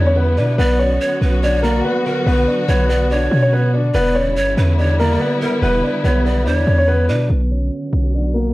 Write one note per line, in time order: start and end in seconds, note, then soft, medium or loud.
0.00 0.39 E2 loud
0.00 0.55 D3 medium
0.00 0.55 G3 medium
0.00 3.90 B3 medium
0.00 0.55 E4 medium
0.07 0.16 C#4 medium
0.07 0.15 C#5 medium
0.16 0.35 B3 medium
0.16 0.35 B4 medium
0.37 0.58 B2 medium
0.37 0.56 D4 medium
0.37 0.58 B4 medium
0.37 0.56 D5 medium
0.58 0.99 B1 loud
0.58 3.91 D3 medium
0.58 3.91 F#3 medium
0.58 0.77 B3 medium
0.58 3.91 F#4 medium
0.58 0.77 B4 loud
0.58 0.98 D5 loud
0.79 1.39 C#4 medium
0.79 1.39 C#5 loud
1.01 1.21 C#5 medium
1.21 1.82 B1 loud
1.21 1.42 B4 medium
1.43 1.62 D4 medium
1.43 1.62 C#5 loud
1.43 1.61 D5 medium
1.63 1.82 A#3 medium
1.63 1.82 A#4 medium
1.63 2.03 D5 medium
1.85 2.03 B3 medium
1.85 2.03 B4 medium
2.06 2.24 B3 medium
2.06 2.26 A#4 medium
2.06 2.24 B4 medium
2.26 2.47 B1 loud
2.26 2.45 B3 medium
2.26 2.45 B4 medium
2.26 2.66 B4 loud
2.47 2.66 D4 medium
2.47 2.66 D5 medium
2.68 3.29 B1 loud
2.68 2.87 B3 medium
2.68 2.87 B4 medium
2.68 2.88 C#5 medium
2.89 3.08 B3 medium
2.89 3.08 B4 medium
2.89 3.09 D5 medium
3.10 3.41 D4 medium
3.10 3.69 C#5 loud
3.10 3.41 D5 medium
3.31 3.92 B2 loud
3.43 3.52 C#4 medium
3.43 3.51 C#5 medium
3.53 3.72 B3 medium
3.53 3.71 B4 medium
3.74 3.92 D4 medium
3.74 3.92 D5 medium
3.94 4.38 E1 loud
3.94 7.27 D3 medium
3.94 7.27 G3 medium
3.94 7.27 B3 medium
3.94 4.13 B3 medium
3.94 7.27 E4 medium
3.94 4.13 B4 loud
3.94 4.34 D5 loud
4.15 4.75 C#4 medium
4.15 4.74 C#5 loud
4.36 4.56 G1 loud
4.36 4.56 C#5 loud
4.57 5.18 E2 loud
4.57 4.77 B4 medium
4.78 4.97 D4 medium
4.78 4.98 C#5 medium
4.78 4.97 D5 medium
4.99 5.18 A#3 medium
4.99 5.18 A#4 medium
4.99 5.39 D5 medium
5.20 5.39 B3 medium
5.20 5.39 B4 medium
5.41 5.60 B3 medium
5.41 5.61 A#4 medium
5.41 5.60 B4 medium
5.62 5.82 E1 loud
5.62 5.81 B3 medium
5.62 6.01 B4 loud
5.62 5.81 B4 loud
5.83 6.02 D4 medium
5.83 6.02 D5 medium
6.04 6.48 B1 loud
6.04 6.23 B3 medium
6.04 6.23 B4 medium
6.04 6.24 C#5 medium
6.25 6.44 B3 medium
6.25 6.44 B4 medium
6.25 6.45 D5 medium
6.46 6.66 E2 loud
6.46 6.77 D4 medium
6.46 6.57 C5 medium
6.46 6.76 D5 medium
6.57 7.05 C#5 medium
6.67 7.10 E2 loud
6.78 6.87 C#4 medium
6.78 6.87 C#5 medium
6.88 7.07 B3 medium
6.88 7.06 B4 medium
7.09 7.29 B2 medium
7.09 7.28 D4 medium
7.09 7.29 B4 medium
7.09 7.27 D5 medium
7.30 7.70 B1 loud
7.30 8.54 D3 medium
7.30 8.54 F#3 medium
7.30 8.54 B3 medium
7.30 7.49 B3 medium
7.30 8.54 F#4 medium
7.30 7.48 B4 loud
7.51 8.11 C#4 medium
7.51 8.10 C#5 medium
7.93 8.53 B1 loud
8.15 8.33 D4 medium
8.15 8.33 D5 medium
8.34 8.53 A#3 medium
8.34 8.53 A#4 medium